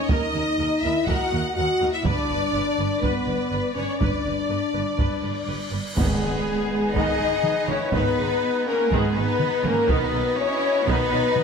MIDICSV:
0, 0, Header, 1, 13, 480
1, 0, Start_track
1, 0, Key_signature, 5, "minor"
1, 0, Tempo, 490196
1, 98, Time_signature, 4, 2, 24, 8
1, 11198, End_track
2, 0, Start_track
2, 0, Title_t, "Violin section"
2, 0, Program_c, 0, 48
2, 93, Note_on_c, 0, 75, 84
2, 803, Note_on_c, 0, 76, 82
2, 815, Note_off_c, 0, 75, 0
2, 1042, Note_on_c, 0, 78, 81
2, 1045, Note_off_c, 0, 76, 0
2, 1507, Note_off_c, 0, 78, 0
2, 1518, Note_on_c, 0, 78, 79
2, 1880, Note_off_c, 0, 78, 0
2, 1884, Note_on_c, 0, 76, 74
2, 2007, Note_off_c, 0, 76, 0
2, 2015, Note_on_c, 0, 74, 87
2, 2955, Note_off_c, 0, 74, 0
2, 2968, Note_on_c, 0, 71, 69
2, 3691, Note_off_c, 0, 71, 0
2, 3705, Note_on_c, 0, 73, 58
2, 3935, Note_on_c, 0, 74, 59
2, 3940, Note_off_c, 0, 73, 0
2, 5581, Note_off_c, 0, 74, 0
2, 5861, Note_on_c, 0, 68, 73
2, 6778, Note_off_c, 0, 68, 0
2, 6815, Note_on_c, 0, 75, 74
2, 7525, Note_on_c, 0, 73, 71
2, 7535, Note_off_c, 0, 75, 0
2, 7768, Note_on_c, 0, 71, 77
2, 7769, Note_off_c, 0, 73, 0
2, 8477, Note_off_c, 0, 71, 0
2, 8497, Note_on_c, 0, 70, 76
2, 8731, Note_off_c, 0, 70, 0
2, 8747, Note_on_c, 0, 68, 65
2, 8977, Note_on_c, 0, 71, 71
2, 8981, Note_off_c, 0, 68, 0
2, 9444, Note_on_c, 0, 70, 69
2, 9456, Note_off_c, 0, 71, 0
2, 9680, Note_on_c, 0, 71, 73
2, 9690, Note_off_c, 0, 70, 0
2, 10167, Note_on_c, 0, 73, 86
2, 10168, Note_off_c, 0, 71, 0
2, 10637, Note_on_c, 0, 71, 87
2, 10652, Note_off_c, 0, 73, 0
2, 11198, Note_off_c, 0, 71, 0
2, 11198, End_track
3, 0, Start_track
3, 0, Title_t, "Flute section"
3, 0, Program_c, 1, 73
3, 5855, Note_on_c, 1, 68, 68
3, 6775, Note_off_c, 1, 68, 0
3, 6793, Note_on_c, 1, 75, 74
3, 7524, Note_off_c, 1, 75, 0
3, 7532, Note_on_c, 1, 73, 69
3, 7773, Note_off_c, 1, 73, 0
3, 7791, Note_on_c, 1, 71, 72
3, 8503, Note_off_c, 1, 71, 0
3, 8506, Note_on_c, 1, 70, 63
3, 8736, Note_off_c, 1, 70, 0
3, 8752, Note_on_c, 1, 68, 63
3, 8983, Note_off_c, 1, 68, 0
3, 8996, Note_on_c, 1, 71, 70
3, 9447, Note_on_c, 1, 70, 71
3, 9466, Note_off_c, 1, 71, 0
3, 9686, Note_off_c, 1, 70, 0
3, 9698, Note_on_c, 1, 71, 67
3, 10167, Note_off_c, 1, 71, 0
3, 10174, Note_on_c, 1, 73, 84
3, 10646, Note_off_c, 1, 73, 0
3, 10646, Note_on_c, 1, 71, 81
3, 11198, Note_off_c, 1, 71, 0
3, 11198, End_track
4, 0, Start_track
4, 0, Title_t, "French horn section"
4, 0, Program_c, 2, 60
4, 0, Note_on_c, 2, 61, 81
4, 86, Note_on_c, 2, 63, 88
4, 102, Note_off_c, 2, 61, 0
4, 800, Note_on_c, 2, 64, 90
4, 811, Note_off_c, 2, 63, 0
4, 1046, Note_on_c, 2, 66, 94
4, 1049, Note_off_c, 2, 64, 0
4, 1510, Note_off_c, 2, 66, 0
4, 1522, Note_on_c, 2, 66, 95
4, 1881, Note_off_c, 2, 66, 0
4, 1894, Note_on_c, 2, 64, 77
4, 2010, Note_on_c, 2, 62, 94
4, 2012, Note_off_c, 2, 64, 0
4, 2955, Note_on_c, 2, 59, 79
4, 2972, Note_off_c, 2, 62, 0
4, 3660, Note_on_c, 2, 61, 66
4, 3670, Note_off_c, 2, 59, 0
4, 3912, Note_off_c, 2, 61, 0
4, 3920, Note_on_c, 2, 62, 67
4, 5607, Note_off_c, 2, 62, 0
4, 5850, Note_on_c, 2, 68, 81
4, 6773, Note_off_c, 2, 68, 0
4, 6804, Note_on_c, 2, 75, 94
4, 7527, Note_on_c, 2, 73, 80
4, 7529, Note_off_c, 2, 75, 0
4, 7767, Note_on_c, 2, 71, 81
4, 7770, Note_off_c, 2, 73, 0
4, 8478, Note_on_c, 2, 70, 86
4, 8491, Note_off_c, 2, 71, 0
4, 8726, Note_off_c, 2, 70, 0
4, 8733, Note_on_c, 2, 68, 85
4, 8969, Note_off_c, 2, 68, 0
4, 9004, Note_on_c, 2, 71, 85
4, 9462, Note_on_c, 2, 70, 81
4, 9470, Note_off_c, 2, 71, 0
4, 9694, Note_off_c, 2, 70, 0
4, 9697, Note_on_c, 2, 71, 74
4, 10175, Note_on_c, 2, 73, 99
4, 10177, Note_off_c, 2, 71, 0
4, 10646, Note_off_c, 2, 73, 0
4, 10653, Note_on_c, 2, 71, 101
4, 11198, Note_off_c, 2, 71, 0
4, 11198, End_track
5, 0, Start_track
5, 0, Title_t, "Woodwind section"
5, 0, Program_c, 3, 71
5, 5827, Note_on_c, 3, 71, 65
5, 5828, Note_on_c, 3, 59, 68
5, 5829, Note_on_c, 3, 68, 68
5, 5833, Note_on_c, 3, 63, 65
5, 9643, Note_off_c, 3, 59, 0
5, 9643, Note_off_c, 3, 71, 0
5, 9644, Note_off_c, 3, 68, 0
5, 9646, Note_off_c, 3, 63, 0
5, 9682, Note_on_c, 3, 59, 80
5, 9682, Note_on_c, 3, 71, 76
5, 9683, Note_on_c, 3, 75, 81
5, 9684, Note_on_c, 3, 66, 80
5, 11198, Note_off_c, 3, 59, 0
5, 11198, Note_off_c, 3, 66, 0
5, 11198, Note_off_c, 3, 71, 0
5, 11198, Note_off_c, 3, 75, 0
5, 11198, End_track
6, 0, Start_track
6, 0, Title_t, "Violin section"
6, 0, Program_c, 4, 48
6, 89, Note_on_c, 4, 75, 88
6, 813, Note_off_c, 4, 75, 0
6, 826, Note_on_c, 4, 76, 75
6, 1048, Note_on_c, 4, 78, 84
6, 1062, Note_off_c, 4, 76, 0
6, 1527, Note_off_c, 4, 78, 0
6, 1539, Note_on_c, 4, 78, 79
6, 1890, Note_off_c, 4, 78, 0
6, 1901, Note_on_c, 4, 76, 64
6, 2016, Note_off_c, 4, 76, 0
6, 2043, Note_on_c, 4, 74, 89
6, 2969, Note_on_c, 4, 71, 72
6, 2970, Note_off_c, 4, 74, 0
6, 3677, Note_off_c, 4, 71, 0
6, 3684, Note_on_c, 4, 73, 61
6, 3925, Note_off_c, 4, 73, 0
6, 3933, Note_on_c, 4, 74, 66
6, 5579, Note_off_c, 4, 74, 0
6, 5861, Note_on_c, 4, 59, 71
6, 6778, Note_off_c, 4, 59, 0
6, 6808, Note_on_c, 4, 68, 88
6, 7531, Note_off_c, 4, 68, 0
6, 7549, Note_on_c, 4, 64, 71
6, 7771, Note_on_c, 4, 63, 82
6, 7782, Note_off_c, 4, 64, 0
6, 8478, Note_off_c, 4, 63, 0
6, 8486, Note_on_c, 4, 61, 73
6, 8725, Note_off_c, 4, 61, 0
6, 8740, Note_on_c, 4, 59, 71
6, 8975, Note_on_c, 4, 63, 78
6, 8978, Note_off_c, 4, 59, 0
6, 9447, Note_on_c, 4, 61, 76
6, 9455, Note_off_c, 4, 63, 0
6, 9691, Note_off_c, 4, 61, 0
6, 9691, Note_on_c, 4, 63, 75
6, 10174, Note_off_c, 4, 63, 0
6, 10176, Note_on_c, 4, 64, 83
6, 10656, Note_on_c, 4, 63, 99
6, 10657, Note_off_c, 4, 64, 0
6, 11198, Note_off_c, 4, 63, 0
6, 11198, End_track
7, 0, Start_track
7, 0, Title_t, "Viola section"
7, 0, Program_c, 5, 48
7, 0, Note_on_c, 5, 75, 55
7, 97, Note_on_c, 5, 70, 72
7, 320, Note_off_c, 5, 70, 0
7, 338, Note_on_c, 5, 70, 54
7, 416, Note_off_c, 5, 70, 0
7, 578, Note_on_c, 5, 70, 52
7, 656, Note_off_c, 5, 70, 0
7, 822, Note_on_c, 5, 70, 56
7, 900, Note_off_c, 5, 70, 0
7, 1062, Note_on_c, 5, 70, 69
7, 1283, Note_off_c, 5, 70, 0
7, 1308, Note_on_c, 5, 70, 53
7, 1386, Note_off_c, 5, 70, 0
7, 1554, Note_on_c, 5, 70, 62
7, 1632, Note_off_c, 5, 70, 0
7, 1777, Note_on_c, 5, 70, 57
7, 1855, Note_off_c, 5, 70, 0
7, 1975, Note_off_c, 5, 75, 0
7, 2011, Note_on_c, 5, 74, 61
7, 2016, Note_on_c, 5, 71, 64
7, 2239, Note_off_c, 5, 71, 0
7, 2254, Note_on_c, 5, 71, 51
7, 2332, Note_off_c, 5, 71, 0
7, 2493, Note_on_c, 5, 71, 49
7, 2571, Note_off_c, 5, 71, 0
7, 2733, Note_on_c, 5, 71, 48
7, 2811, Note_off_c, 5, 71, 0
7, 2971, Note_on_c, 5, 71, 60
7, 3196, Note_off_c, 5, 71, 0
7, 3213, Note_on_c, 5, 71, 42
7, 3291, Note_off_c, 5, 71, 0
7, 3450, Note_on_c, 5, 71, 54
7, 3528, Note_off_c, 5, 71, 0
7, 3690, Note_on_c, 5, 71, 46
7, 3768, Note_off_c, 5, 71, 0
7, 3924, Note_on_c, 5, 71, 54
7, 4152, Note_off_c, 5, 71, 0
7, 4168, Note_on_c, 5, 71, 37
7, 4246, Note_off_c, 5, 71, 0
7, 4399, Note_on_c, 5, 71, 38
7, 4477, Note_off_c, 5, 71, 0
7, 4636, Note_on_c, 5, 71, 41
7, 4714, Note_off_c, 5, 71, 0
7, 4880, Note_on_c, 5, 71, 53
7, 5109, Note_off_c, 5, 71, 0
7, 5127, Note_on_c, 5, 71, 35
7, 5205, Note_off_c, 5, 71, 0
7, 5361, Note_on_c, 5, 71, 38
7, 5439, Note_off_c, 5, 71, 0
7, 5597, Note_on_c, 5, 71, 37
7, 5617, Note_off_c, 5, 74, 0
7, 5675, Note_off_c, 5, 71, 0
7, 5836, Note_on_c, 5, 59, 69
7, 5838, Note_on_c, 5, 51, 61
7, 6067, Note_off_c, 5, 59, 0
7, 6069, Note_off_c, 5, 51, 0
7, 6084, Note_on_c, 5, 56, 41
7, 6086, Note_on_c, 5, 51, 39
7, 6163, Note_off_c, 5, 56, 0
7, 6165, Note_off_c, 5, 51, 0
7, 6809, Note_on_c, 5, 51, 69
7, 6809, Note_on_c, 5, 59, 68
7, 7030, Note_off_c, 5, 51, 0
7, 7035, Note_off_c, 5, 59, 0
7, 7042, Note_on_c, 5, 51, 49
7, 7044, Note_on_c, 5, 56, 53
7, 7120, Note_off_c, 5, 51, 0
7, 7122, Note_off_c, 5, 56, 0
7, 7530, Note_on_c, 5, 51, 57
7, 7531, Note_on_c, 5, 56, 51
7, 7608, Note_off_c, 5, 51, 0
7, 7609, Note_off_c, 5, 56, 0
7, 7763, Note_on_c, 5, 51, 61
7, 7764, Note_on_c, 5, 59, 63
7, 7991, Note_off_c, 5, 51, 0
7, 7992, Note_off_c, 5, 59, 0
7, 8009, Note_on_c, 5, 56, 49
7, 8011, Note_on_c, 5, 51, 49
7, 8087, Note_off_c, 5, 56, 0
7, 8090, Note_off_c, 5, 51, 0
7, 8724, Note_on_c, 5, 59, 64
7, 8729, Note_on_c, 5, 51, 77
7, 8952, Note_off_c, 5, 59, 0
7, 8955, Note_off_c, 5, 51, 0
7, 8966, Note_on_c, 5, 51, 51
7, 8966, Note_on_c, 5, 56, 46
7, 9044, Note_off_c, 5, 51, 0
7, 9045, Note_off_c, 5, 56, 0
7, 9451, Note_on_c, 5, 56, 55
7, 9453, Note_on_c, 5, 51, 56
7, 9530, Note_off_c, 5, 56, 0
7, 9531, Note_off_c, 5, 51, 0
7, 9679, Note_on_c, 5, 51, 73
7, 9679, Note_on_c, 5, 59, 77
7, 9910, Note_off_c, 5, 51, 0
7, 9910, Note_off_c, 5, 59, 0
7, 9927, Note_on_c, 5, 51, 52
7, 9928, Note_on_c, 5, 54, 45
7, 10006, Note_off_c, 5, 51, 0
7, 10006, Note_off_c, 5, 54, 0
7, 10648, Note_on_c, 5, 51, 79
7, 10649, Note_on_c, 5, 59, 79
7, 10870, Note_off_c, 5, 51, 0
7, 10876, Note_off_c, 5, 59, 0
7, 10880, Note_on_c, 5, 54, 56
7, 10881, Note_on_c, 5, 51, 61
7, 10959, Note_off_c, 5, 54, 0
7, 10960, Note_off_c, 5, 51, 0
7, 11198, End_track
8, 0, Start_track
8, 0, Title_t, "Timpani"
8, 0, Program_c, 6, 47
8, 5852, Note_on_c, 6, 44, 80
8, 6534, Note_off_c, 6, 44, 0
8, 11198, End_track
9, 0, Start_track
9, 0, Title_t, "Cello section"
9, 0, Program_c, 7, 48
9, 111, Note_on_c, 7, 39, 77
9, 189, Note_off_c, 7, 39, 0
9, 336, Note_on_c, 7, 39, 54
9, 414, Note_off_c, 7, 39, 0
9, 575, Note_on_c, 7, 39, 53
9, 653, Note_off_c, 7, 39, 0
9, 816, Note_on_c, 7, 39, 52
9, 894, Note_off_c, 7, 39, 0
9, 1065, Note_on_c, 7, 39, 78
9, 1143, Note_off_c, 7, 39, 0
9, 1305, Note_on_c, 7, 39, 54
9, 1383, Note_off_c, 7, 39, 0
9, 1541, Note_on_c, 7, 39, 56
9, 1619, Note_off_c, 7, 39, 0
9, 1773, Note_on_c, 7, 39, 55
9, 1851, Note_off_c, 7, 39, 0
9, 2003, Note_on_c, 7, 43, 73
9, 2081, Note_off_c, 7, 43, 0
9, 2243, Note_on_c, 7, 43, 51
9, 2322, Note_off_c, 7, 43, 0
9, 2480, Note_on_c, 7, 43, 50
9, 2558, Note_off_c, 7, 43, 0
9, 2727, Note_on_c, 7, 43, 49
9, 2805, Note_off_c, 7, 43, 0
9, 2969, Note_on_c, 7, 43, 67
9, 3048, Note_off_c, 7, 43, 0
9, 3197, Note_on_c, 7, 43, 45
9, 3276, Note_off_c, 7, 43, 0
9, 3441, Note_on_c, 7, 43, 47
9, 3520, Note_off_c, 7, 43, 0
9, 3682, Note_on_c, 7, 43, 41
9, 3760, Note_off_c, 7, 43, 0
9, 3922, Note_on_c, 7, 43, 57
9, 4000, Note_off_c, 7, 43, 0
9, 4168, Note_on_c, 7, 43, 40
9, 4246, Note_off_c, 7, 43, 0
9, 4400, Note_on_c, 7, 43, 41
9, 4478, Note_off_c, 7, 43, 0
9, 4636, Note_on_c, 7, 43, 38
9, 4715, Note_off_c, 7, 43, 0
9, 4875, Note_on_c, 7, 43, 54
9, 4953, Note_off_c, 7, 43, 0
9, 5110, Note_on_c, 7, 43, 39
9, 5188, Note_off_c, 7, 43, 0
9, 5354, Note_on_c, 7, 43, 40
9, 5432, Note_off_c, 7, 43, 0
9, 5590, Note_on_c, 7, 43, 39
9, 5668, Note_off_c, 7, 43, 0
9, 5839, Note_on_c, 7, 56, 66
9, 6767, Note_off_c, 7, 56, 0
9, 6804, Note_on_c, 7, 63, 77
9, 7529, Note_off_c, 7, 63, 0
9, 7543, Note_on_c, 7, 61, 69
9, 7771, Note_on_c, 7, 59, 68
9, 7778, Note_off_c, 7, 61, 0
9, 8492, Note_on_c, 7, 58, 66
9, 8493, Note_off_c, 7, 59, 0
9, 8728, Note_on_c, 7, 56, 68
9, 8733, Note_off_c, 7, 58, 0
9, 8970, Note_on_c, 7, 59, 73
9, 8971, Note_off_c, 7, 56, 0
9, 9443, Note_off_c, 7, 59, 0
9, 9449, Note_on_c, 7, 58, 74
9, 9692, Note_off_c, 7, 58, 0
9, 9693, Note_on_c, 7, 59, 71
9, 10170, Note_on_c, 7, 61, 84
9, 10174, Note_off_c, 7, 59, 0
9, 10648, Note_on_c, 7, 59, 82
9, 10653, Note_off_c, 7, 61, 0
9, 11198, Note_off_c, 7, 59, 0
9, 11198, End_track
10, 0, Start_track
10, 0, Title_t, "Double bass section"
10, 0, Program_c, 8, 48
10, 97, Note_on_c, 8, 39, 73
10, 176, Note_off_c, 8, 39, 0
10, 343, Note_on_c, 8, 39, 56
10, 421, Note_off_c, 8, 39, 0
10, 589, Note_on_c, 8, 39, 56
10, 668, Note_off_c, 8, 39, 0
10, 826, Note_on_c, 8, 39, 52
10, 904, Note_off_c, 8, 39, 0
10, 1068, Note_on_c, 8, 39, 72
10, 1147, Note_off_c, 8, 39, 0
10, 1299, Note_on_c, 8, 39, 55
10, 1378, Note_off_c, 8, 39, 0
10, 1540, Note_on_c, 8, 39, 57
10, 1618, Note_off_c, 8, 39, 0
10, 1775, Note_on_c, 8, 39, 53
10, 1854, Note_off_c, 8, 39, 0
10, 2010, Note_on_c, 8, 31, 76
10, 2089, Note_off_c, 8, 31, 0
10, 2255, Note_on_c, 8, 31, 54
10, 2333, Note_off_c, 8, 31, 0
10, 2491, Note_on_c, 8, 31, 52
10, 2569, Note_off_c, 8, 31, 0
10, 2734, Note_on_c, 8, 31, 51
10, 2813, Note_off_c, 8, 31, 0
10, 2968, Note_on_c, 8, 31, 68
10, 3046, Note_off_c, 8, 31, 0
10, 3210, Note_on_c, 8, 31, 46
10, 3288, Note_off_c, 8, 31, 0
10, 3457, Note_on_c, 8, 31, 46
10, 3535, Note_off_c, 8, 31, 0
10, 3696, Note_on_c, 8, 31, 42
10, 3775, Note_off_c, 8, 31, 0
10, 3931, Note_on_c, 8, 31, 60
10, 4009, Note_off_c, 8, 31, 0
10, 4176, Note_on_c, 8, 31, 43
10, 4254, Note_off_c, 8, 31, 0
10, 4408, Note_on_c, 8, 31, 43
10, 4486, Note_off_c, 8, 31, 0
10, 4657, Note_on_c, 8, 31, 39
10, 4735, Note_off_c, 8, 31, 0
10, 4895, Note_on_c, 8, 31, 54
10, 4974, Note_off_c, 8, 31, 0
10, 5144, Note_on_c, 8, 31, 41
10, 5223, Note_off_c, 8, 31, 0
10, 5379, Note_on_c, 8, 31, 38
10, 5458, Note_off_c, 8, 31, 0
10, 5614, Note_on_c, 8, 31, 37
10, 5692, Note_off_c, 8, 31, 0
10, 5863, Note_on_c, 8, 32, 67
10, 5941, Note_off_c, 8, 32, 0
10, 6106, Note_on_c, 8, 32, 49
10, 6184, Note_off_c, 8, 32, 0
10, 6815, Note_on_c, 8, 32, 71
10, 6893, Note_off_c, 8, 32, 0
10, 7052, Note_on_c, 8, 32, 49
10, 7130, Note_off_c, 8, 32, 0
10, 7535, Note_on_c, 8, 32, 46
10, 7613, Note_off_c, 8, 32, 0
10, 7772, Note_on_c, 8, 32, 70
10, 7850, Note_off_c, 8, 32, 0
10, 8022, Note_on_c, 8, 32, 54
10, 8101, Note_off_c, 8, 32, 0
10, 8726, Note_on_c, 8, 32, 75
10, 8805, Note_off_c, 8, 32, 0
10, 8967, Note_on_c, 8, 32, 52
10, 9045, Note_off_c, 8, 32, 0
10, 9446, Note_on_c, 8, 32, 55
10, 9524, Note_off_c, 8, 32, 0
10, 9680, Note_on_c, 8, 35, 76
10, 9758, Note_off_c, 8, 35, 0
10, 9921, Note_on_c, 8, 35, 62
10, 9999, Note_off_c, 8, 35, 0
10, 10644, Note_on_c, 8, 35, 86
10, 10723, Note_off_c, 8, 35, 0
10, 10888, Note_on_c, 8, 35, 67
10, 10966, Note_off_c, 8, 35, 0
10, 11198, End_track
11, 0, Start_track
11, 0, Title_t, "Cymbal swell"
11, 0, Program_c, 10, 119
11, 3926, Note_on_c, 10, 60, 55
11, 5850, Note_off_c, 10, 60, 0
11, 11198, End_track
12, 0, Start_track
12, 0, Title_t, "Impact"
12, 0, Program_c, 11, 103
12, 5844, Note_on_c, 11, 60, 70
12, 7769, Note_off_c, 11, 60, 0
12, 11198, End_track
13, 0, Start_track
13, 0, Title_t, "Taiko and cinematic ensemble drums"
13, 89, Note_on_c, 9, 41, 92
13, 187, Note_off_c, 9, 41, 0
13, 1047, Note_on_c, 9, 41, 77
13, 1145, Note_off_c, 9, 41, 0
13, 2006, Note_on_c, 9, 41, 90
13, 2104, Note_off_c, 9, 41, 0
13, 2966, Note_on_c, 9, 41, 77
13, 3064, Note_off_c, 9, 41, 0
13, 3925, Note_on_c, 9, 41, 83
13, 4023, Note_off_c, 9, 41, 0
13, 4883, Note_on_c, 9, 41, 75
13, 4981, Note_off_c, 9, 41, 0
13, 5849, Note_on_c, 9, 41, 92
13, 5947, Note_off_c, 9, 41, 0
13, 6808, Note_on_c, 9, 41, 78
13, 6906, Note_off_c, 9, 41, 0
13, 7279, Note_on_c, 9, 47, 51
13, 7377, Note_off_c, 9, 47, 0
13, 7523, Note_on_c, 9, 47, 49
13, 7621, Note_off_c, 9, 47, 0
13, 7759, Note_on_c, 9, 41, 89
13, 7857, Note_off_c, 9, 41, 0
13, 8725, Note_on_c, 9, 41, 83
13, 8823, Note_off_c, 9, 41, 0
13, 9209, Note_on_c, 9, 47, 55
13, 9307, Note_off_c, 9, 47, 0
13, 9446, Note_on_c, 9, 47, 50
13, 9544, Note_off_c, 9, 47, 0
13, 9686, Note_on_c, 9, 41, 90
13, 9784, Note_off_c, 9, 41, 0
13, 10644, Note_on_c, 9, 41, 84
13, 10741, Note_off_c, 9, 41, 0
13, 11120, Note_on_c, 9, 47, 56
13, 11198, Note_off_c, 9, 47, 0
13, 11198, End_track
0, 0, End_of_file